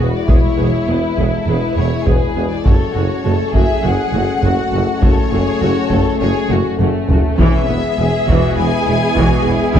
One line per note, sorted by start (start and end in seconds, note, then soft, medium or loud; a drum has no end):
0.00 0.12 E1 soft
0.00 2.62 G#3 medium
0.00 2.62 E4 soft
0.00 0.29 F#4 soft
0.00 0.15 B4 medium
0.16 0.30 D5 medium
0.27 0.37 E1 soft
0.27 0.41 E1 soft
0.27 0.36 E2 medium
0.27 0.36 B3 soft
0.27 2.03 E4 medium
0.27 0.35 G#4 soft
0.27 0.88 C#5 soft
0.27 taiko medium
0.57 0.67 E1 soft
0.57 0.71 E1 soft
0.57 0.66 E2 medium
0.57 0.65 B3 soft
0.57 0.66 G#4 soft
0.87 0.96 E1 soft
0.87 1.00 E1 soft
0.87 0.95 E2 medium
0.87 0.96 B3 soft
0.87 0.96 G#4 soft
0.87 1.32 B4 medium
1.17 1.30 E1 soft
1.17 1.27 E1 soft
1.17 1.25 E2 soft
1.17 1.27 B3 soft
1.17 1.27 G#4 soft
1.17 taiko medium
1.34 1.48 A4 medium
1.46 1.59 E1 soft
1.46 1.56 E1 medium
1.46 1.54 E2 medium
1.46 1.56 B3 soft
1.46 1.57 G#4 soft
1.46 1.77 B4 medium
1.76 1.85 E1 soft
1.76 1.90 E1 soft
1.76 1.84 E2 soft
1.76 1.85 B3 soft
1.76 1.85 G#4 soft
1.76 2.06 C#5 medium
2.05 2.14 E1 medium
2.05 2.19 E1 soft
2.05 2.14 E2 soft
2.05 2.14 B3 soft
2.05 2.65 G#4 medium
2.05 2.14 G#4 soft
2.05 2.51 B4 medium
2.05 taiko medium
2.35 2.44 E1 soft
2.35 2.48 E1 medium
2.35 2.43 E2 soft
2.35 2.44 B3 soft
2.35 2.44 G#4 soft
2.51 2.66 D5 medium
2.65 2.74 F#1 medium
2.65 2.78 F#1 medium
2.65 2.73 F#2 medium
2.65 2.73 A3 soft
2.65 7.22 A3 medium
2.65 7.22 C#4 medium
2.65 2.73 F#4 medium
2.65 2.94 A4 medium
2.65 3.54 C#5 medium
2.65 taiko medium
2.94 3.04 F#1 medium
2.94 3.08 F#1 soft
2.94 3.02 F#2 medium
2.94 3.03 A3 soft
2.94 3.03 F#4 soft
2.94 3.25 F#4 medium
3.25 3.34 F#1 soft
3.25 3.38 F#1 soft
3.25 3.33 F#2 medium
3.25 3.33 A3 soft
3.25 3.33 F#4 soft
3.25 3.54 A4 medium
3.53 3.63 F#1 medium
3.53 3.67 F#1 medium
3.53 3.61 F#2 soft
3.53 3.63 A3 soft
3.53 3.63 F#4 soft
3.53 4.43 G#4 medium
3.53 3.83 E5 medium
3.53 taiko medium
3.83 3.93 F#1 medium
3.83 3.97 F#1 medium
3.83 3.91 F#2 medium
3.83 3.91 A3 soft
3.83 3.92 F#4 soft
3.83 5.02 F#5 medium
4.13 4.21 F#1 medium
4.13 4.26 F#1 soft
4.13 4.21 F#2 soft
4.13 4.23 A3 soft
4.13 4.22 F#4 soft
4.42 4.51 F#1 medium
4.42 4.56 F#1 soft
4.42 4.50 F#2 medium
4.42 4.52 A3 soft
4.42 4.51 F#4 soft
4.42 5.02 F#4 medium
4.42 taiko medium
4.72 4.80 F#1 soft
4.72 4.86 F#1 medium
4.72 4.80 F#2 medium
4.72 4.83 A3 soft
4.72 4.82 F#4 soft
5.01 5.11 F#1 medium
5.01 5.15 F#1 medium
5.01 5.09 F#2 medium
5.01 5.12 A3 medium
5.01 5.12 F#4 medium
5.01 5.32 A4 medium
5.01 6.19 C#5 medium
5.01 taiko medium
5.32 5.44 F#1 medium
5.32 5.40 F#1 medium
5.32 5.40 F#2 medium
5.32 5.41 A3 soft
5.32 5.41 F#4 soft
5.32 5.61 G#4 medium
5.61 5.74 F#1 medium
5.61 5.71 F#1 medium
5.61 5.69 F#2 medium
5.61 5.70 A3 soft
5.61 5.91 F#4 medium
5.61 5.70 F#4 soft
5.90 5.99 F#1 medium
5.90 6.03 F#1 medium
5.90 5.99 F#2 medium
5.90 5.99 A3 soft
5.90 5.99 F#4 soft
5.90 6.21 A4 medium
5.90 taiko medium
6.20 6.32 F#1 medium
6.20 6.29 F#1 medium
6.20 6.29 F#2 medium
6.20 6.29 A3 soft
6.20 6.29 F#4 soft
6.20 6.50 G#4 medium
6.20 6.49 C#5 medium
6.50 6.62 F#1 medium
6.50 6.58 F#1 medium
6.50 6.58 F#2 soft
6.50 6.59 A3 soft
6.50 6.59 F#4 soft
6.50 6.80 F#4 medium
6.50 taiko low-mid medium
6.80 6.91 F#1 medium
6.80 6.88 F#1 medium
6.80 6.88 F#2 medium
6.80 7.38 A3 medium
6.80 6.89 A3 soft
6.80 6.90 F#4 soft
6.80 taiko low-mid medium
7.09 7.17 F#1 medium
7.09 7.21 F#1 medium
7.09 7.18 F#2 medium
7.09 7.20 A3 soft
7.09 7.19 F#4 soft
7.09 taiko low medium
7.38 7.47 E1 medium
7.38 7.51 E1 medium
7.38 7.47 E2 medium
7.38 7.67 E3 medium
7.38 9.80 G#3 medium
7.38 9.80 B3 medium
7.38 7.68 C#4 medium
7.38 9.80 G#4 medium
7.38 8.53 E5 medium
7.38 taiko medium
7.68 7.77 E1 soft
7.68 7.80 E1 soft
7.68 7.77 E2 soft
7.68 7.97 B3 medium
7.68 7.77 B3 soft
7.98 8.06 E1 soft
7.98 8.10 E1 soft
7.98 8.06 E2 soft
7.98 8.08 G#3 soft
7.98 8.28 G#4 medium
8.28 8.36 E1 medium
8.28 8.40 E1 medium
8.28 8.36 E2 medium
8.28 8.56 E3 medium
8.28 8.57 F#4 medium
8.28 taiko medium
8.57 8.65 E1 medium
8.57 8.69 E1 medium
8.57 8.66 E2 soft
8.57 8.66 B3 soft
8.57 9.16 E4 medium
8.57 9.73 G#5 loud
8.87 8.95 E1 soft
8.87 8.99 E1 soft
8.87 8.96 E2 soft
8.87 8.95 G#3 soft
9.17 9.25 E1 medium
9.17 9.29 E1 medium
9.17 9.25 E2 medium
9.17 9.44 E3 medium
9.17 9.46 F#4 medium
9.17 taiko medium
9.45 9.57 E1 soft
9.45 9.54 E1 soft
9.45 9.54 E2 soft
9.45 9.53 B3 medium
9.45 9.80 E4 medium
9.74 9.80 E1 medium
9.74 9.80 E2 medium
9.74 9.80 E3 medium
9.74 9.80 G#5 medium
9.74 taiko medium